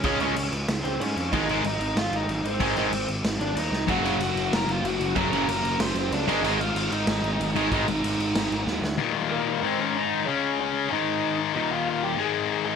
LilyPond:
<<
  \new Staff \with { instrumentName = "Lead electric guitar" } { \time 4/4 \key aes \lydian \tempo 4 = 188 <des' des''>4. r4 <c' c''>8 <des' des''>4 | <ees' ees''>4 <ees' ees''>4 <f' f''>8 <ees' ees''>4 <c' c''>8~ | <c' c''>4. r4 <d' d''>8 <ees' ees''>4 | <ges' ges''>4 <ges' ges''>4 <bes' bes''>8 <f' f''>8 <ges' ges''>4 |
<bes' bes''>4 <bes' bes''>4 <c'' c'''>8 <c' c''>8 <d' d''>4 | <ees' ees''>8 <f' f''>4 <ees' ees''>2~ <ees' ees''>8~ | <ees' ees''>2. r4 | \key aes \major r4 <bes bes'>4 <c' c''>8 <des' des''>8 <ees' ees''>4 |
<des' des''>4 <des' des''>4 <ees' ees''>4. r8 | <ees' ees''>8 <f' f''>8 <f' f''>8 <g' g''>8 <aes' aes''>4. <ees' ees''>8 | }
  \new Staff \with { instrumentName = "Distorted electric guitar" } { \clef bass \time 4/4 \key aes \lydian <des aes des'>8 <des aes des'>8 r2. | <aes, ees aes>8 <aes, ees aes>8 r2. | <aes, ees aes>8 <aes, ees aes>8 r2. | <ges, des ges>8 <ges, des ges>8 r2. |
<ges, des ges>8 <ges, des ges>8 r2 r8 <aes, ees aes>8 | <aes, ees aes>8 r2. <aes, ees aes>8 | <aes, ees aes>8 r2. r8 | \key aes \major <ees, bes, ees>2 <aes, ees aes>2 |
<des aes des'>2 <aes, ees aes>2 | <ees, bes, ees>2 <aes, ees aes>2 | }
  \new Staff \with { instrumentName = "Overdriven electric guitar" } { \clef bass \time 4/4 \key aes \lydian <des aes des'>8 <des aes des'>8 r2. | <aes, ees aes>8 <aes, ees aes>8 r2. | <aes, ees aes>8 <aes, ees aes>8 r2. | <ges, des ges>8 <ges, des ges>8 r2. |
<ges, des ges>8 <ges, des ges>8 r2 r8 <aes, ees aes>8 | <aes, ees aes>8 r2. <aes, ees aes>8 | <aes, ees aes>8 r2. r8 | \key aes \major r1 |
r1 | r1 | }
  \new Staff \with { instrumentName = "Distorted electric guitar" } { \clef bass \time 4/4 \key aes \lydian r1 | r1 | r1 | <ges, des ges>1 |
<ges, des ges>2.~ <ges, des ges>8 <aes, ees aes>8~ | <aes, ees aes>2.~ <aes, ees aes>8 <aes, ees aes>8~ | <aes, ees aes>2.~ <aes, ees aes>8 r8 | \key aes \major r1 |
r1 | r1 | }
  \new Staff \with { instrumentName = "Picked electric bass" } { \clef bass \time 4/4 \key aes \lydian des,8 des,8 des,8 des,8 des,8 des,8 aes,8 f,8 | aes,,4 aes,,8 aes,,8 aes,,8 aes,,8 aes,,8 aes,,8 | aes,,8 aes,,8 aes,,8 aes,,8 aes,,8 aes,,8 ees,8 c,8 | ges,,4 ges,,8 ges,,8 ges,,8 ges,,8 ges,,8 ges,,8 |
ges,,8 ges,,8 ges,,8 ges,,8 ges,,8 ges,,8 des,8 aes,,8 | aes,,4 aes,,8 aes,,8 aes,,8 aes,,8 aes,,8 aes,,8 | aes,,8 aes,,8 aes,,8 aes,,8 aes,,8 aes,,8 ees,8 d,8 | \key aes \major r1 |
r1 | r1 | }
  \new DrumStaff \with { instrumentName = "Drums" } \drummode { \time 4/4 <cymc bd>8 cymc8 cymc8 cymc8 <cymc sn>8 cymc8 cymc8 cymc8 | <cymc bd>8 cymc8 cymc8 cymc8 <cymc sn>8 cymc8 cymc8 cymc8 | <cymc bd>8 cymc8 cymc8 cymc8 <cymc sn>8 cymc8 cymc8 sn8 | <cymc bd>8 cymc8 cymc8 cymc8 <cymc sn>8 cymc8 cymc8 cymc8 |
<cymc bd>8 cymc8 cymc8 cymc8 <cymc sn>8 cymc8 cymc8 cymc8 | cymc8 cymc8 cymc8 cymc8 <cymc sn>8 cymc8 cymc8 cymc8 | <cymc bd>8 cymc8 cymc8 cymc8 <cymc sn>8 cymc8 sn8 sn8 | r4 r4 r4 r4 |
r4 r4 r4 r4 | r4 r4 r4 r4 | }
>>